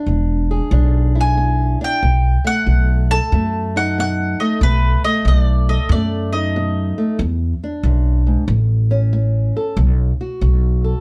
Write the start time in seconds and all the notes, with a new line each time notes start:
Already playing: E3 D4
0.06 E1 E2
0.51 G#4
0.71 B1 E2 D4
1.15 E4
1.21 G#5
1.37 E2
1.81 D4 G5
2.03 B1 B2
2.45 A3 F#5
2.66 B1 B2
3.11 A4 A5
3.32 F#2 B2 A3
3.76 D#4 F#5
3.98 B2 F#5
4.40 A3 D#5
4.61 B1 B2 B4
5.04 A3 D#5
5.25 B1 B2 D#5
5.39 D5
5.69 A4 D#5
5.89 F#2 B2 A3 D5
6.33 D#4 D#5
6.56 B2
6.98 A3
7.19 E2
7.64 D4
7.83 B1 F#2
8.27 G#2
8.48 A1 A2
8.91 C#4
9.13 A2
9.57 A4
9.77 B1 B2
10.21 F#4
10.41 B1 B2
10.84 A4